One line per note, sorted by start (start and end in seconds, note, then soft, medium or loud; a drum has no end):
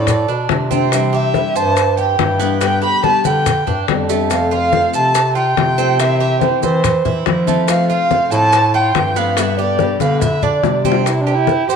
0.00 0.26 A2 medium
0.00 0.28 A4 medium
0.00 0.47 D5 medium
0.07 muted nylon-string guitar stroke medium
0.07 high bongo medium
0.07 high conga soft
0.07 low conga medium
0.07 maracas medium
0.28 0.48 B2 medium
0.28 0.70 D4 medium
0.28 high bongo soft
0.28 high conga soft
0.28 maracas soft
0.49 1.49 C3 medium
0.49 0.70 D3 medium
0.49 0.71 A3 medium
0.49 0.71 D4 medium
0.49 0.70 F4 medium
0.49 high bongo medium
0.49 low bongo medium
0.49 high conga medium
0.49 maracas soft
0.71 0.92 A3 medium
0.71 1.12 C4 medium
0.71 0.92 D4 medium
0.71 0.91 F4 medium
0.71 high conga medium
0.71 maracas medium
0.92 1.33 C3 medium
0.92 1.34 E3 medium
0.92 1.34 G3 medium
0.92 1.34 D4 medium
0.92 1.35 E4 medium
0.92 1.02 E5 medium
0.92 high bongo medium
0.92 high conga soft
0.92 maracas loud
1.13 1.54 G4 medium
1.13 1.57 E5 medium
1.13 high bongo soft
1.13 high conga soft
1.13 maracas soft
1.34 1.75 C3 medium
1.34 1.75 E3 medium
1.34 1.75 G3 medium
1.34 1.76 D4 medium
1.34 1.76 E4 medium
1.34 high bongo medium
1.34 high conga medium
1.34 maracas soft
1.55 2.15 G2 loud
1.55 1.97 C5 medium
1.55 1.98 A5 loud
1.55 high bongo soft
1.55 high conga soft
1.55 maracas medium
1.76 muted nylon-string guitar stroke medium
1.76 high bongo medium
1.76 high conga soft
1.76 maracas medium
1.97 2.39 G4 medium
1.97 2.58 G5 medium
1.97 high conga soft
1.97 maracas soft
2.18 2.91 G2 medium
2.18 2.39 E3 medium
2.18 2.40 G3 medium
2.18 2.39 D4 medium
2.18 2.38 E4 medium
2.18 high bongo medium
2.18 low bongo medium
2.18 high conga medium
2.18 maracas soft
2.39 2.60 E3 medium
2.39 2.60 G3 medium
2.39 2.60 B3 loud
2.39 2.60 D4 medium
2.39 2.60 E4 medium
2.39 high bongo soft
2.39 high conga soft
2.39 maracas medium
2.60 3.01 B2 medium
2.60 3.02 D3 medium
2.60 3.03 G3 medium
2.60 2.81 B3 medium
2.60 3.03 B3 medium
2.60 3.03 G4 medium
2.60 2.82 G5 loud
2.60 high bongo medium
2.60 high conga soft
2.60 maracas medium
2.82 3.23 G4 medium
2.82 3.03 B5 loud
2.82 high bongo soft
2.82 high conga soft
2.82 maracas soft
3.03 3.44 B2 medium
3.03 3.45 D3 medium
3.03 3.45 G3 medium
3.03 3.45 B3 medium
3.03 3.45 G4 medium
3.03 3.24 A5 loud
3.03 high bongo medium
3.03 high conga medium
3.03 maracas soft
3.24 3.64 D3 medium
3.24 3.65 B4 medium
3.24 3.85 G5 loud
3.24 high bongo soft
3.24 high conga medium
3.24 maracas medium
3.46 muted nylon-string guitar stroke medium
3.46 high bongo medium
3.46 high conga soft
3.46 low conga medium
3.46 maracas medium
3.67 3.86 G2 medium
3.67 4.08 D4 medium
3.67 high bongo soft
3.67 high conga soft
3.67 low conga medium
3.67 maracas soft
3.87 4.88 F2 medium
3.87 4.08 D3 soft
3.87 4.08 G3 medium
3.87 4.08 B3 medium
3.87 4.08 G4 medium
3.87 high bongo medium
3.87 low bongo medium
3.87 high conga medium
3.87 maracas soft
4.09 4.30 D3 soft
4.09 4.30 G3 medium
4.09 4.50 A3 loud
4.09 4.30 B3 medium
4.09 4.29 G4 medium
4.09 maracas medium
4.30 4.71 C3 medium
4.30 4.72 F3 medium
4.30 4.72 A3 medium
4.30 4.72 C4 medium
4.30 4.72 F4 medium
4.30 4.51 F5 medium
4.30 high bongo medium
4.30 high conga soft
4.30 maracas medium
4.51 4.92 F4 medium
4.51 4.92 F5 loud
4.51 high bongo soft
4.51 high conga soft
4.51 maracas soft
4.72 5.14 C3 medium
4.72 5.14 F3 medium
4.72 5.14 A3 medium
4.72 5.15 C4 medium
4.72 5.15 F4 medium
4.72 high bongo medium
4.72 high conga medium
4.72 maracas soft
4.93 5.53 C3 medium
4.93 5.34 A4 medium
4.93 5.33 A5 loud
4.93 high bongo soft
4.93 high conga soft
4.93 maracas medium
5.15 muted nylon-string guitar stroke medium
5.15 high bongo medium
5.15 high conga soft
5.15 maracas medium
5.35 5.77 F4 medium
5.35 6.02 G5 loud
5.35 high conga soft
5.35 maracas soft
5.57 6.56 C3 medium
5.57 5.77 F3 soft
5.57 5.78 A3 medium
5.57 5.77 C4 medium
5.57 5.77 F4 medium
5.57 high bongo medium
5.57 low bongo medium
5.57 high conga medium
5.57 maracas soft
5.78 5.99 F3 medium
5.78 5.99 A3 medium
5.78 5.98 C4 loud
5.78 5.99 C4 medium
5.78 5.98 F4 medium
5.78 high bongo soft
5.78 high conga soft
5.78 maracas medium
5.99 6.40 C3 medium
5.99 6.40 E3 medium
5.99 6.41 A#3 medium
5.99 6.20 C4 medium
5.99 6.41 C4 medium
5.99 6.41 E4 medium
5.99 6.20 E5 loud
5.99 high bongo medium
5.99 high conga soft
5.99 maracas medium
6.20 6.61 G4 medium
6.20 6.40 E5 medium
6.20 high bongo soft
6.20 high conga soft
6.20 maracas soft
6.41 6.83 C3 medium
6.41 6.82 E3 medium
6.41 6.83 A#3 medium
6.41 6.83 C4 medium
6.41 6.84 E4 medium
6.41 6.61 C5 medium
6.41 high bongo medium
6.41 high conga medium
6.41 maracas soft
6.62 7.02 E3 medium
6.62 7.04 C5 medium
6.62 7.22 C5 medium
6.62 high bongo soft
6.62 high conga medium
6.62 maracas medium
6.84 muted nylon-string guitar stroke medium
6.84 high bongo medium
6.84 high conga soft
6.84 low conga medium
6.84 maracas medium
7.05 7.24 E3 medium
7.05 7.46 E4 medium
7.05 high bongo soft
7.05 high conga soft
7.05 low conga medium
7.05 maracas soft
7.26 7.46 E3 medium
7.26 7.99 F3 medium
7.26 7.47 A#3 soft
7.26 7.47 C4 medium
7.26 7.46 E4 medium
7.26 high bongo medium
7.26 low bongo medium
7.26 high conga medium
7.26 maracas soft
7.47 7.68 E3 medium
7.47 7.88 A3 medium
7.47 7.68 A#3 medium
7.47 7.68 C4 medium
7.47 7.67 E4 medium
7.47 high conga medium
7.47 maracas medium
7.68 8.09 C3 medium
7.68 8.10 F3 medium
7.68 8.10 A3 medium
7.68 8.10 C4 medium
7.68 8.10 F4 medium
7.68 7.88 F5 medium
7.68 high bongo medium
7.68 high conga soft
7.68 maracas loud
7.90 8.30 F4 medium
7.90 8.29 F5 loud
7.90 high bongo soft
7.90 high conga soft
7.90 maracas soft
8.11 8.52 C3 medium
8.11 8.52 F3 medium
8.11 8.52 A3 medium
8.11 8.53 C4 medium
8.11 8.53 F4 medium
8.11 high bongo medium
8.11 high conga medium
8.11 maracas soft
8.31 8.91 A2 loud
8.31 8.73 A4 medium
8.31 8.72 A5 loud
8.31 high bongo soft
8.31 high conga soft
8.31 maracas medium
8.53 muted nylon-string guitar stroke medium
8.53 high bongo medium
8.53 high conga soft
8.53 maracas medium
8.74 9.15 F4 medium
8.74 9.19 G5 medium
8.74 high conga soft
8.74 maracas soft
8.94 9.94 G2 medium
8.94 9.15 F3 medium
8.94 9.15 A3 medium
8.94 9.15 C4 medium
8.94 9.14 F4 medium
8.94 high bongo medium
8.94 low bongo medium
8.94 high conga medium
8.94 maracas soft
9.16 9.37 F3 medium
9.16 9.37 A3 medium
9.16 9.36 B3 loud
9.16 9.36 C4 medium
9.16 9.36 F4 medium
9.16 9.39 F5 medium
9.16 high bongo soft
9.16 high conga soft
9.16 maracas medium
9.37 9.77 B2 medium
9.37 9.78 D3 medium
9.37 9.78 G3 medium
9.37 9.57 B3 medium
9.37 9.79 B3 medium
9.37 9.79 G4 medium
9.37 9.59 E5 medium
9.37 high bongo medium
9.37 high conga soft
9.37 maracas medium
9.58 9.99 G4 medium
9.58 9.98 D5 medium
9.58 high bongo soft
9.58 high conga soft
9.58 maracas soft
9.79 10.20 B2 medium
9.79 10.20 D3 medium
9.79 10.20 G3 medium
9.79 10.21 B3 medium
9.79 10.21 G4 medium
9.79 high bongo medium
9.79 high conga medium
9.79 maracas soft
10.00 10.40 D3 loud
10.00 10.41 B4 medium
10.00 10.21 F5 medium
10.00 high bongo soft
10.00 high conga medium
10.00 maracas medium
10.21 10.45 E5 medium
10.21 muted nylon-string guitar stroke medium
10.21 high bongo medium
10.21 high conga soft
10.21 low conga medium
10.21 maracas medium
10.42 10.62 D3 medium
10.42 10.84 D4 medium
10.42 10.85 D5 medium
10.42 high conga soft
10.42 low conga medium
10.42 maracas soft
10.63 11.63 C3 medium
10.63 10.84 D3 medium
10.63 10.84 G3 medium
10.63 10.84 B3 medium
10.63 10.83 G4 medium
10.63 low bongo loud
10.63 high conga medium
10.63 maracas soft
10.84 11.06 D3 medium
10.84 11.05 G3 medium
10.84 11.05 B3 medium
10.84 11.05 C4 loud
10.84 11.05 G4 medium
10.84 high conga medium
10.84 maracas medium
10.92 low bongo loud
11.06 11.23 E4 medium
11.06 high bongo medium
11.06 high conga soft
11.06 maracas loud
11.21 11.36 D4 medium
11.26 11.68 G4 medium
11.26 high bongo soft
11.26 high conga soft
11.26 maracas soft
11.35 11.69 E4 loud
11.47 high bongo medium
11.47 high conga medium
11.47 maracas soft
11.69 11.76 G2 loud
11.69 11.76 G4 loud
11.69 11.76 C5 medium
11.69 high bongo soft
11.69 high conga soft
11.69 maracas medium